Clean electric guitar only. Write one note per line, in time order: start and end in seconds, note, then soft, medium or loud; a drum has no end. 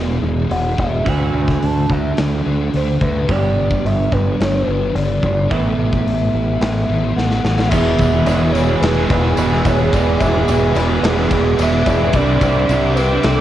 0.00 1.04 E2 medium
0.00 1.04 B2 medium
0.00 1.04 E3 medium
0.00 1.05 G#3 medium
0.00 1.05 B3 medium
0.00 1.05 E4 medium
1.04 3.26 D3 medium
1.04 3.26 A3 medium
1.04 3.27 C4 loud
1.04 3.27 F#4 loud
3.28 5.49 G2 medium
3.28 5.49 D3 loud
3.28 5.49 G3 medium
3.28 5.51 B3 medium
3.28 5.49 D4 medium
3.28 5.50 G4 medium
5.50 7.70 A2 medium
5.50 7.71 E3 medium
5.50 7.71 B3 loud
5.50 7.71 E4 medium
5.50 7.71 A4 loud
7.71 8.26 E2 medium
7.71 8.25 B2 loud
7.71 7.99 E3 loud
7.71 7.99 G#3 loud
7.71 8.00 B3 loud
7.71 8.01 G#4 loud
7.99 8.14 E3 medium
7.99 8.14 G#3 medium
7.99 8.14 B3 medium
7.99 8.12 G#4 medium
8.13 8.26 E3 medium
8.13 8.27 G#3 medium
8.13 8.27 B3 medium
8.13 8.27 G#4 medium
8.26 9.37 E2 medium
8.26 8.82 B2 medium
8.26 8.54 E3 loud
8.26 8.54 G#3 medium
8.26 8.55 B3 medium
8.26 8.54 G#4 loud
8.54 muted clean electric guitar stroke soft
8.67 8.98 E3 medium
8.67 8.96 G#3 medium
8.67 8.95 B3 medium
8.67 8.95 G#4 medium
8.96 9.09 E3 medium
8.96 9.09 G#3 medium
8.96 9.09 B3 medium
8.96 9.10 G#4 medium
9.10 9.37 E3 medium
9.10 9.37 G#3 medium
9.10 9.37 B3 medium
9.10 9.37 G#4 medium
9.37 9.79 E2 loud
9.37 9.79 B2 loud
9.37 9.52 E3 medium
9.37 9.51 G#3 loud
9.37 9.51 B3 loud
9.37 9.50 G#4 loud
9.51 9.65 E3 medium
9.51 9.65 G#3 medium
9.51 9.66 B3 medium
9.51 9.66 G#4 medium
9.66 9.82 E3 medium
9.66 9.80 G#3 medium
9.66 9.79 B3 loud
9.66 9.79 G#4 medium
9.80 9.95 E3 medium
9.80 9.94 G#3 medium
9.80 9.95 B3 medium
9.80 9.95 G#4 medium
9.95 10.48 E2 loud
9.95 10.48 B2 medium
9.95 10.21 E3 loud
9.95 10.21 G#3 loud
9.95 10.22 B3 loud
9.95 10.23 G#4 loud
10.21 10.38 E3 medium
10.21 10.36 G#3 medium
10.21 10.36 B3 medium
10.21 10.35 G#4 medium
10.36 10.49 E3 medium
10.36 10.49 G#3 medium
10.36 10.49 B3 medium
10.36 10.50 G#4 medium
10.49 11.04 E2 medium
10.49 11.04 B2 medium
10.49 10.78 E3 medium
10.49 10.77 G#3 medium
10.49 10.77 B3 medium
10.49 10.77 G#4 medium
10.78 muted clean electric guitar stroke medium
10.90 11.19 E3 medium
10.90 11.17 G#3 medium
10.90 11.17 B3 medium
10.90 11.17 G#4 medium
11.18 11.32 E3 medium
11.18 11.31 G#3 medium
11.18 11.32 B3 medium
11.18 11.33 G#4 medium
11.32 11.60 E3 medium
11.32 11.60 G#3 medium
11.32 11.61 B3 medium
11.32 11.60 G#4 medium
11.60 12.01 E2 medium
11.60 12.01 B2 loud
11.60 11.76 E3 medium
11.60 11.74 G#3 loud
11.60 11.73 B3 loud
11.60 11.72 G#4 loud
11.74 11.88 E3 medium
11.74 11.88 G#3 medium
11.74 11.89 B3 medium
11.74 11.89 G#4 medium
11.89 12.04 E3 medium
11.89 12.03 G#3 medium
11.89 12.03 B3 medium
11.89 12.01 G#4 loud
12.03 12.16 E3 medium
12.03 12.14 G#3 medium
12.03 12.14 B3 medium
12.03 12.13 G#4 medium
12.16 12.70 C3 medium
12.16 12.42 E3 medium
12.16 12.43 G3 loud
12.16 12.44 D4 loud
12.16 12.44 E4 loud
12.43 12.71 E3 medium
12.43 12.59 G3 medium
12.43 12.57 D4 medium
12.43 12.57 E4 medium
12.57 12.71 G3 medium
12.57 12.71 D4 medium
12.57 12.72 E4 medium
12.71 13.41 C3 medium
12.71 12.98 E3 medium
12.71 12.98 G3 loud
12.71 12.99 D4 medium
12.71 12.99 E4 medium
12.98 muted clean electric guitar stroke soft
13.12 13.40 G3 medium
13.12 13.39 D4 medium
13.12 13.39 E4 medium